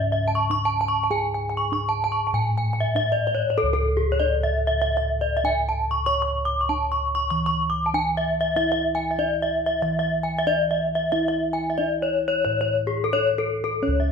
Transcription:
Already playing: kettle gongs G#2 C#4
0.12 bronze metallophone E5
0.28 bronze metallophone A5
0.35 bronze metallophone C#6
0.50 kettle gongs D4, bronze metallophone C#6
0.65 bronze metallophone A5
0.81 bronze metallophone A5
0.88 bronze metallophone C#6
1.03 bronze metallophone A5
1.11 kettle gongs G#4, bronze metallophone G#5
1.34 bronze metallophone G#5
1.50 bronze metallophone G#5
1.57 bronze metallophone C#6
1.72 kettle gongs D4, bronze metallophone C#6
1.89 bronze metallophone A5
2.04 bronze metallophone A5
2.12 bronze metallophone C#6
2.27 bronze metallophone A5
2.33 kettle gongs A2, bronze metallophone G#5
2.58 bronze metallophone G#5
2.73 bronze metallophone G#5
2.80 bronze metallophone E5
2.95 kettle gongs D4, bronze metallophone E5
3.12 bronze metallophone D5
3.27 bronze metallophone D5
3.35 bronze metallophone C#5
3.50 bronze metallophone C#5
3.58 bronze metallophone A4, kettle gongs A4
3.63 kettle gongs C#2
3.73 bronze metallophone A4
3.97 bronze metallophone G#4
4.12 bronze metallophone C#5
4.20 kettle gongs D4, bronze metallophone D5
4.44 bronze metallophone E5
4.67 bronze metallophone E5
4.82 bronze metallophone E5
4.97 bronze metallophone E5
5.21 bronze metallophone D5
5.37 bronze metallophone E5
5.44 kettle gongs D4, bronze metallophone G#5
5.69 bronze metallophone A5
5.91 bronze metallophone C#6
6.06 kettle gongs C#5, bronze metallophone C#6
6.22 bronze metallophone C#6
6.45 bronze metallophone D6
6.61 bronze metallophone C#6
6.69 kettle gongs D4, bronze metallophone A5
6.92 bronze metallophone C#6
7.15 bronze metallophone C#6
7.30 kettle gongs E3, bronze metallophone C#6
7.46 bronze metallophone C#6
7.70 bronze metallophone D6
7.86 bronze metallophone A5
7.94 kettle gongs D4, bronze metallophone G#5
8.17 bronze metallophone E5
8.41 bronze metallophone E5
8.56 kettle gongs E4, bronze metallophone E5
8.72 bronze metallophone E5
8.95 bronze metallophone G#5
9.11 bronze metallophone E5
9.18 kettle gongs D4, bronze metallophone D5
9.42 bronze metallophone E5
9.66 bronze metallophone E5
9.82 kettle gongs E3, bronze metallophone E5
9.99 bronze metallophone E5
10.23 bronze metallophone G#5
10.39 bronze metallophone E5
10.47 kettle gongs D4, bronze metallophone D5
10.71 bronze metallophone E5
10.95 bronze metallophone E5
11.12 kettle gongs E4, bronze metallophone E5
11.28 bronze metallophone E5
11.53 bronze metallophone G#5
11.70 bronze metallophone E5
11.78 kettle gongs D4, bronze metallophone D5
12.02 bronze metallophone C#5
12.28 bronze metallophone C#5
12.45 kettle gongs A2, bronze metallophone C#5
12.61 bronze metallophone C#5
12.87 bronze metallophone G#4
13.04 bronze metallophone A4
13.13 kettle gongs D4, bronze metallophone C#5
13.38 bronze metallophone A4
13.64 bronze metallophone A4
13.83 kettle gongs C#4, bronze metallophone C#5
13.88 kettle gongs C#2
14.00 bronze metallophone E5

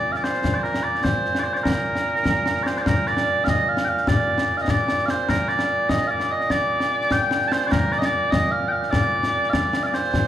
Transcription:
Already playing: bagpipes A#2 D5
0.12 bagpipes F5, snare
0.17 bagpipes D5
0.23 bagpipes C5, snare
0.34 snare
0.44 concert bass drum, snare
0.54 bagpipes D5
0.59 bagpipes C5
0.64 bagpipes A#4, snare
0.74 snare
0.83 bagpipes D5
0.95 snare
1.03 bagpipes C5, concert bass drum, snare
1.25 snare
1.35 snare
1.39 bagpipes C5 D5
1.53 bagpipes C5 D5, snare
1.64 bagpipes A#4, concert bass drum, snare
1.95 snare
2.16 snare
2.25 concert bass drum, snare
2.46 snare
2.56 snare
2.63 bagpipes C5 D5, snare
2.76 bagpipes D5, snare
2.81 bagpipes C5
2.86 bagpipes A#4, concert bass drum, snare
3.07 bagpipes D5, snare
3.17 snare
3.44 bagpipes F5, concert bass drum, snare
3.48 bagpipes D#5
3.69 bagpipes F5
3.77 snare
3.84 bagpipes F5 G5
3.97 snare
4.07 bagpipes D5, concert bass drum, snare
4.38 snare
4.57 bagpipes F5, snare
4.61 bagpipes D#5
4.68 bagpipes D5, concert bass drum, snare
4.88 snare
4.98 snare
5.06 bagpipes C5 F5, snare
5.29 bagpipes A#4, concert bass drum, snare
5.48 bagpipes D5, snare
5.59 snare
5.89 bagpipes D#5, concert bass drum, snare
6.07 bagpipes D5 F5
6.20 snare
6.31 bagpipes D#5
6.40 snare
6.50 bagpipes D5, concert bass drum, snare
6.80 snare
7.01 snare
7.11 bagpipes G5, concert bass drum, snare
7.31 snare
7.41 snare
7.48 bagpipes A5, snare
7.52 bagpipes C5
7.62 snare
7.67 bagpipes A#4 D5
7.72 concert bass drum, snare
7.92 bagpipes D5, snare
7.99 bagpipes D#5, snare
8.05 bagpipes D5
8.31 bagpipes D#5, concert bass drum, snare
8.51 bagpipes F5
8.68 bagpipes F5 G5
8.83 snare
8.91 bagpipes D5, concert bass drum, snare
9.23 snare
9.43 snare
9.50 bagpipes D5 F5, concert bass drum, snare
9.73 snare
9.83 bagpipes D5 F5, snare
9.94 bagpipes C5, snare
10.04 snare
10.14 concert bass drum, snare

